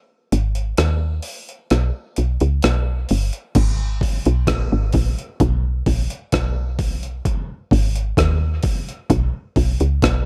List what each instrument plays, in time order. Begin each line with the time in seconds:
0.32 fm bass G#1, closed hi-hat
0.55 closed hi-hat
0.77 fm bass D#2, cross-stick, closed hi-hat
1.22 open hi-hat
1.49 closed hi-hat
1.70 fm bass B1, cross-stick, closed hi-hat
2.16 fm bass B1, closed hi-hat
2.40 fm bass C#2, closed hi-hat
2.62 fm bass B1, cross-stick, closed hi-hat
3.09 fm bass G1, open hi-hat
3.33 closed hi-hat
3.55 fm bass G#1, kick, closed hi-hat, crash
4.01 kick, open hi-hat
4.25 fm bass B1, closed hi-hat
4.47 fm bass A#1, kick, cross-stick, closed hi-hat
4.72 fm bass G#1
4.93 fm bass A#1, kick, open hi-hat
5.19 closed hi-hat
5.40 fm bass B1, kick, closed hi-hat
5.86 fm bass A#1, kick, open hi-hat
6.10 closed hi-hat
6.32 fm bass B1, kick, cross-stick, closed hi-hat
6.79 kick, open hi-hat
7.03 closed hi-hat
7.25 kick, closed hi-hat
7.71 fm bass G#1, kick, open hi-hat
7.96 closed hi-hat
8.17 fm bass D#2, kick, cross-stick, closed hi-hat
8.63 kick, open hi-hat
8.89 closed hi-hat
9.10 fm bass B1, kick, closed hi-hat
9.56 fm bass B1, kick, open hi-hat
9.80 fm bass C#2, closed hi-hat
10.02 fm bass B1, kick, cross-stick, closed hi-hat